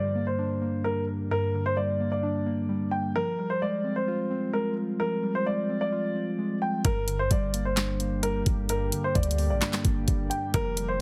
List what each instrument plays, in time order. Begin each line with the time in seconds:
Already playing: synth keys G2 D3 G3, grand piano D5
0.15 synth keys A#3
0.27 grand piano C5
0.38 synth keys D4
0.62 synth keys A#3
0.84 synth keys G3, grand piano A#4
1.31 synth keys G2, grand piano A#4
1.54 synth keys D3
1.66 grand piano C5
1.77 synth keys G3, grand piano D5
2.00 synth keys A#3
2.12 grand piano D5
2.23 synth keys D4
2.46 synth keys A#3
2.69 synth keys G3
2.91 grand piano G5
3.15 synth keys F3, grand piano A#4
3.39 synth keys G3
3.50 grand piano C5
3.62 synth keys G#3, grand piano D5
3.84 synth keys C4
3.96 grand piano C5
4.08 synth keys F4
4.30 synth keys C4
4.53 synth keys G#3, grand piano A#4
5.00 synth keys F3, grand piano A#4
5.23 synth keys G3
5.35 grand piano C5
5.46 synth keys G#3, grand piano D5
5.69 synth keys C4
5.81 grand piano D5
5.92 synth keys F4
6.15 synth keys C4
6.38 synth keys G#3
6.62 grand piano G5
6.84 808-style bass G1, synth keys G2, ambient pad D3 G3 A#3 G4, grand piano A#4, kick, closed hi-hat
7.08 synth keys D3, closed hi-hat
7.19 808-style bass G#1, grand piano C5
7.31 808-style bass G1, synth keys G3, grand piano D5, kick, closed hi-hat
7.54 synth keys A#3, closed hi-hat
7.65 grand piano C5
7.77 synth keys D4, snare, clap, closed hi-hat
8.00 synth keys A#3, closed hi-hat
8.23 synth keys G3, grand piano A#4, closed hi-hat
8.46 808-style bass G1, kick, closed hi-hat
8.69 synth keys G2, grand piano A#4, closed hi-hat
8.92 synth keys D3, closed hi-hat
9.04 grand piano C5
9.15 808-style bass D2, synth keys G3, grand piano D5, kick, closed hi-hat
9.23 closed hi-hat
9.31 closed hi-hat
9.38 synth keys A#3, open hi-hat
9.50 808-style bass A#1, grand piano D5
9.62 synth keys D4, snare, clap, closed hi-hat
9.73 snare, clap
9.85 808-style bass G1, synth keys A#3, kick, closed hi-hat
10.08 808-style bass G1, synth keys G3, kick, closed hi-hat
10.30 grand piano G5, closed hi-hat
10.54 808-style bass F1, synth keys F3, ambient pad F3 C4 G4, grand piano A#4, kick, closed hi-hat
10.77 synth keys G3, closed hi-hat
10.88 grand piano C5